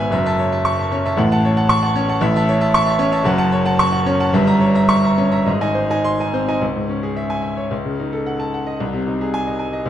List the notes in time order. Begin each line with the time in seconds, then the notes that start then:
Already playing: G#1 G#2 B3 B4 B5
0.00 E5 G#5
0.11 F#1 F#2 E5
0.26 E5 A5
0.39 C#5
0.52 E5 A5
0.65 C#6
0.79 E5 A5
0.92 C#4 C#5
1.05 E5 A5
1.17 A1 A2 F#5
1.32 F#5 A5
1.45 C#5
1.57 F#5 A5
1.69 C#6
1.83 F#5 A5
1.96 C#4 C#5
2.09 F#5 A5
2.21 A1 A2 E5
2.36 E5 A5
2.49 C#5
2.61 E5 A5
2.74 C#6
2.86 E5 A5
2.99 C#4 C#5
3.12 E5 A5
3.24 F#1 F#2 F#5
3.38 F#5 A5
3.52 C#5
3.65 F#5 A5
3.79 C#6
3.92 F#5 A5
4.06 C#4 C#5
4.20 F#5 A5
4.33 G1 G2 E5
4.47 E5 A#5
4.61 C#5
4.75 E5 A#5
4.89 C#6
5.03 E5 A#5
5.18 C#4 C#5
5.31 E5 A#5
5.46 G#1 G#2 D#5
5.61 D#4 D#5 G#5
5.75 C5
5.90 D#4 D#5 G#5
6.04 C6
6.20 D#4 D#5 G#5
6.33 C4 C5
6.48 D#4 D#5 G#5
6.62 C#2
6.76 G#2
6.89 C#4
7.03 G#4
7.16 E5
7.30 G#5
7.42 E5
7.57 C#5
7.71 C#2
7.85 C#3
8.00 D#4
8.13 A4
8.26 F#5
8.40 A5
8.54 F#5
8.67 D#5
8.80 C2
8.93 C3
9.07 D#4
9.21 G#4
9.34 G#5
9.47 D#5
9.59 G#5
9.73 D#5
9.86 C#2